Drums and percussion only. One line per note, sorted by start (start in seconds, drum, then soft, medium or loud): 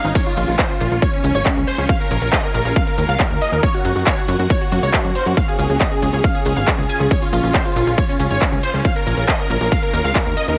0.04 closed hi-hat soft
0.04 shaker soft
0.15 kick loud
0.15 closed hi-hat medium
0.15 crash loud
0.15 ride medium
0.15 shaker soft
0.26 closed hi-hat medium
0.26 shaker soft
0.37 open hi-hat loud
0.37 ride medium
0.37 shaker medium
0.48 closed hi-hat medium
0.48 shaker soft
0.59 kick loud
0.59 clap loud
0.59 closed hi-hat medium
0.59 ride medium
0.59 shaker soft
0.70 closed hi-hat medium
0.70 shaker soft
0.81 open hi-hat medium
0.81 ride medium
0.81 shaker medium
0.91 closed hi-hat medium
0.91 shaker soft
1.02 kick loud
1.02 closed hi-hat medium
1.02 ride medium
1.02 shaker soft
1.13 closed hi-hat medium
1.13 shaker soft
1.24 open hi-hat loud
1.24 ride medium
1.24 shaker medium
1.35 closed hi-hat medium
1.35 shaker soft
1.46 kick loud
1.46 clap loud
1.46 closed hi-hat medium
1.46 ride medium
1.46 shaker soft
1.56 closed hi-hat medium
1.56 shaker soft
1.67 open hi-hat loud
1.67 ride medium
1.67 shaker medium
1.78 closed hi-hat medium
1.78 shaker soft
1.89 kick loud
1.89 closed hi-hat medium
1.89 ride medium
1.89 shaker soft
2.00 closed hi-hat medium
2.00 shaker soft
2.11 open hi-hat loud
2.11 ride medium
2.11 shaker medium
2.22 closed hi-hat medium
2.22 shaker soft
2.33 kick loud
2.33 clap loud
2.33 closed hi-hat medium
2.33 ride medium
2.33 shaker soft
2.44 closed hi-hat medium
2.44 shaker soft
2.54 open hi-hat medium
2.54 ride medium
2.54 shaker medium
2.65 closed hi-hat medium
2.65 shaker soft
2.76 kick loud
2.76 closed hi-hat medium
2.76 ride medium
2.76 shaker soft
2.87 closed hi-hat medium
2.87 shaker soft
2.98 open hi-hat loud
2.98 ride medium
2.98 shaker medium
3.09 closed hi-hat medium
3.09 shaker soft
3.20 kick loud
3.20 clap loud
3.20 closed hi-hat medium
3.20 ride medium
3.20 shaker soft
3.30 closed hi-hat medium
3.30 shaker soft
3.41 open hi-hat loud
3.41 ride medium
3.41 shaker medium
3.52 closed hi-hat medium
3.52 shaker soft
3.63 kick loud
3.63 closed hi-hat medium
3.63 ride medium
3.63 shaker soft
3.74 closed hi-hat medium
3.74 shaker soft
3.85 open hi-hat loud
3.85 ride medium
3.85 shaker medium
3.96 closed hi-hat medium
3.96 shaker soft
4.06 kick loud
4.06 clap loud
4.06 closed hi-hat medium
4.06 ride medium
4.06 shaker soft
4.17 closed hi-hat soft
4.17 shaker soft
4.28 open hi-hat medium
4.28 ride medium
4.28 shaker medium
4.39 closed hi-hat medium
4.39 shaker soft
4.50 kick loud
4.50 closed hi-hat medium
4.50 ride medium
4.50 shaker soft
4.61 closed hi-hat medium
4.61 shaker soft
4.72 open hi-hat loud
4.72 ride medium
4.72 shaker medium
4.83 closed hi-hat medium
4.83 shaker soft
4.94 kick loud
4.94 clap loud
4.94 closed hi-hat medium
4.94 ride medium
4.94 shaker soft
5.04 closed hi-hat soft
5.04 shaker soft
5.15 open hi-hat loud
5.15 ride medium
5.15 shaker medium
5.26 closed hi-hat medium
5.26 shaker soft
5.37 kick loud
5.37 closed hi-hat medium
5.37 ride medium
5.37 shaker soft
5.48 closed hi-hat soft
5.48 shaker soft
5.59 open hi-hat loud
5.59 ride medium
5.59 shaker medium
5.70 closed hi-hat medium
5.70 shaker soft
5.81 kick loud
5.81 clap loud
5.81 closed hi-hat medium
5.81 ride medium
5.81 shaker soft
5.91 closed hi-hat medium
5.91 shaker soft
6.02 open hi-hat medium
6.02 ride medium
6.02 shaker medium
6.13 closed hi-hat soft
6.13 shaker soft
6.24 kick loud
6.24 closed hi-hat medium
6.24 ride medium
6.24 shaker soft
6.35 closed hi-hat medium
6.35 shaker soft
6.46 open hi-hat loud
6.46 ride medium
6.46 shaker medium
6.57 closed hi-hat medium
6.57 shaker soft
6.67 kick loud
6.67 clap loud
6.67 closed hi-hat medium
6.67 ride medium
6.67 shaker soft
6.79 closed hi-hat medium
6.79 shaker soft
6.89 open hi-hat loud
6.89 ride medium
6.89 shaker medium
7.00 closed hi-hat medium
7.00 shaker soft
7.11 kick loud
7.11 closed hi-hat medium
7.11 ride medium
7.11 shaker soft
7.22 closed hi-hat medium
7.22 shaker soft
7.33 open hi-hat loud
7.33 ride medium
7.33 shaker medium
7.44 closed hi-hat medium
7.44 shaker soft
7.54 kick loud
7.54 clap loud
7.54 closed hi-hat medium
7.54 ride medium
7.54 shaker soft
7.65 closed hi-hat soft
7.65 shaker soft
7.76 open hi-hat medium
7.76 ride medium
7.76 shaker medium
7.87 closed hi-hat soft
7.87 shaker soft
7.98 kick loud
7.98 closed hi-hat medium
7.98 ride medium
7.98 shaker soft
8.09 closed hi-hat medium
8.09 shaker soft
8.20 open hi-hat loud
8.20 ride medium
8.20 shaker medium
8.31 closed hi-hat medium
8.31 shaker soft
8.41 kick loud
8.41 clap loud
8.41 closed hi-hat medium
8.41 ride medium
8.41 shaker soft
8.52 closed hi-hat medium
8.52 shaker soft
8.63 open hi-hat medium
8.63 ride medium
8.63 shaker medium
8.74 closed hi-hat medium
8.74 shaker soft
8.85 kick loud
8.85 closed hi-hat medium
8.85 ride medium
8.85 shaker soft
8.96 closed hi-hat medium
8.96 shaker soft
9.07 open hi-hat loud
9.07 ride medium
9.07 shaker medium
9.18 closed hi-hat medium
9.18 shaker soft
9.28 kick loud
9.28 clap loud
9.28 closed hi-hat medium
9.28 ride medium
9.28 shaker soft
9.39 closed hi-hat medium
9.39 shaker soft
9.50 open hi-hat medium
9.50 ride medium
9.50 shaker medium
9.61 closed hi-hat medium
9.61 shaker soft
9.72 kick loud
9.72 closed hi-hat medium
9.72 ride medium
9.72 shaker soft
9.83 closed hi-hat medium
9.83 shaker soft
9.94 open hi-hat loud
9.94 ride medium
9.94 shaker medium
10.05 closed hi-hat medium
10.05 shaker soft
10.15 kick loud
10.15 clap loud
10.15 closed hi-hat medium
10.15 ride medium
10.15 shaker soft
10.26 closed hi-hat medium
10.26 shaker soft
10.37 open hi-hat medium
10.37 ride medium
10.37 shaker medium
10.48 closed hi-hat medium
10.48 shaker soft